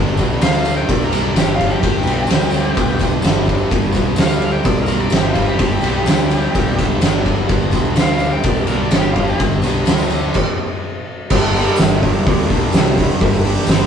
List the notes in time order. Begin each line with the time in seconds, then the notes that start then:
Already playing: G1 G2 D3 G3
0.07 tambourine
0.17 B1 D3 G3, kick, ride, tambourine
0.30 tambourine
0.41 D2 G2 D3 G3 F5, snare, ride, tambourine
0.53 tambourine
0.65 ride, tambourine
0.77 G5, tambourine
0.89 B1 D5, kick, ride, tambourine
1.01 A#4, tambourine
1.11 D3 G3, ride, tambourine
1.23 D5
1.34 G1 G2 D3 G3 G4, snare, ride, tambourine
1.47 tambourine
1.55 G3 F4
1.60 D3, kick, ride
1.71 G4, tambourine
1.80 G1 G2 D3 G3, kick, ride, tambourine
1.93 tambourine
2.03 B1 G3, tambourine
2.07 D3, ride
2.15 tambourine
2.27 D2 G2 D3, ride, tambourine
2.31 G3, snare
2.38 tambourine
2.50 ride, tambourine
2.63 tambourine
2.75 B1, kick, ride, tambourine
2.87 tambourine
2.99 D3 G3, kick, ride, tambourine
3.11 tambourine
3.22 G1 G2 D3 G3, snare, ride, tambourine
3.33 tambourine
3.45 D3 G3, kick, tambourine
3.49 ride
3.58 tambourine
3.69 G1 G2 D3 G3, kick, ride, tambourine
3.83 tambourine
3.92 B1 D3 G3, kick, ride, tambourine
4.04 tambourine
4.16 D2 G2 D3 G3 F5, snare, ride, tambourine
4.28 tambourine
4.42 ride
4.51 G5, tambourine
4.64 B1 D5, kick, ride, tambourine
4.76 tambourine
4.81 A#4
4.86 G3, ride, tambourine
4.92 D3
4.99 D5
5.10 G1 G2 D3, snare, ride, tambourine
5.14 G3 G4
5.22 tambourine
5.32 G3 F4, kick, ride
5.38 D3
5.45 G4, tambourine
5.58 G1 G2 D3 G3, kick, ride, tambourine
5.70 tambourine
5.81 B1 G3, ride, tambourine
5.86 D3
5.93 tambourine
6.05 D2 G2 D3, snare, ride, tambourine
6.10 G3
6.18 tambourine
6.30 ride, tambourine
6.42 tambourine
6.54 B1, kick, ride, tambourine
6.66 tambourine
6.78 D3 G3, kick, ride, tambourine
7.01 G1 G2 D3 G3, snare, ride, tambourine
7.13 tambourine
7.25 D3 G3, kick, ride
7.37 tambourine
7.48 G1 G2 D3 G3, kick, ride, tambourine
7.60 tambourine
7.71 B1 G3, kick, ride, tambourine
7.76 D3
7.85 tambourine
7.96 D2 G2 D3 G3, snare, ride, tambourine
8.00 F5
8.06 tambourine
8.19 ride, tambourine
8.32 G5, tambourine
8.43 B1, kick, ride, tambourine
8.48 D5
8.54 tambourine
8.67 G3 A#4, ride, tambourine
8.71 D3
8.82 D5
8.90 G1 G2 D3, snare, ride, tambourine
8.95 G3 G4
9.03 tambourine
9.12 F4, ride
9.16 D3 G3, kick
9.27 G4, tambourine
9.39 G1 G2 D3 G3, kick, ride, tambourine
9.51 tambourine
9.62 B1 G3, ride, tambourine
9.67 D3
9.74 tambourine
9.86 D2 G2 D3, snare, ride, tambourine
9.91 G3
9.97 tambourine
10.10 ride, tambourine
10.21 tambourine
10.34 kick, crash
11.30 G1 G2 D3 G3, kick, crash
11.54 G2 D3 G3, open hi-hat
11.76 G1 G2 D3, snare, open hi-hat, tambourine
11.80 G3
12.03 G2 D3 G3, kick, open hi-hat
12.27 D2 G2 D3 G3, kick, open hi-hat
12.50 B1 G2 D3 G3, kick, open hi-hat
12.72 C2 G2 D3 G3, snare, open hi-hat, tambourine
12.97 G2 D3 G3, kick, open hi-hat
13.20 G1 G2 D3 G3, kick, open hi-hat
13.45 G2 D3 G3, open hi-hat
13.58 snare
13.66 G1 G2 D3, snare, open hi-hat, tambourine
13.71 G3